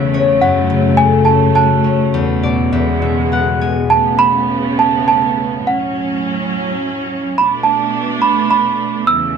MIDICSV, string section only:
0, 0, Header, 1, 2, 480
1, 0, Start_track
1, 0, Key_signature, 3, "major"
1, 0, Tempo, 571973
1, 347, Time_signature, 3, 2, 24, 8
1, 1788, Tempo, 587084
1, 5148, Tempo, 569801
1, 7789, End_track
2, 0, Start_track
2, 0, Title_t, "String section"
2, 0, Program_c, 0, 48
2, 0, Note_on_c, 0, 40, 76
2, 0, Note_on_c, 0, 49, 71
2, 0, Note_on_c, 0, 52, 69
2, 0, Note_on_c, 0, 57, 88
2, 330, Note_off_c, 0, 52, 0
2, 332, Note_off_c, 0, 40, 0
2, 348, Note_on_c, 0, 42, 82
2, 1756, Note_off_c, 0, 49, 0
2, 1774, Note_off_c, 0, 42, 0
2, 1796, Note_on_c, 0, 47, 76
2, 1798, Note_on_c, 0, 40, 82
2, 2232, Note_off_c, 0, 57, 0
2, 2273, Note_on_c, 0, 56, 92
2, 3227, Note_off_c, 0, 47, 0
2, 3229, Note_off_c, 0, 40, 0
2, 3231, Note_off_c, 0, 56, 0
2, 3237, Note_on_c, 0, 59, 77
2, 3243, Note_on_c, 0, 57, 65
2, 3246, Note_on_c, 0, 49, 78
2, 4659, Note_off_c, 0, 59, 0
2, 4662, Note_off_c, 0, 57, 0
2, 4663, Note_off_c, 0, 49, 0
2, 4664, Note_on_c, 0, 54, 69
2, 4665, Note_on_c, 0, 45, 72
2, 4666, Note_on_c, 0, 61, 79
2, 6090, Note_off_c, 0, 54, 0
2, 6091, Note_off_c, 0, 45, 0
2, 6091, Note_off_c, 0, 61, 0
2, 6104, Note_on_c, 0, 62, 84
2, 6112, Note_on_c, 0, 47, 75
2, 6112, Note_on_c, 0, 57, 72
2, 7521, Note_off_c, 0, 57, 0
2, 7527, Note_off_c, 0, 62, 0
2, 7531, Note_off_c, 0, 47, 0
2, 7531, Note_on_c, 0, 57, 75
2, 7533, Note_on_c, 0, 52, 66
2, 7536, Note_on_c, 0, 49, 62
2, 7540, Note_on_c, 0, 40, 76
2, 7789, Note_off_c, 0, 40, 0
2, 7789, Note_off_c, 0, 49, 0
2, 7789, Note_off_c, 0, 52, 0
2, 7789, Note_off_c, 0, 57, 0
2, 7789, End_track
0, 0, End_of_file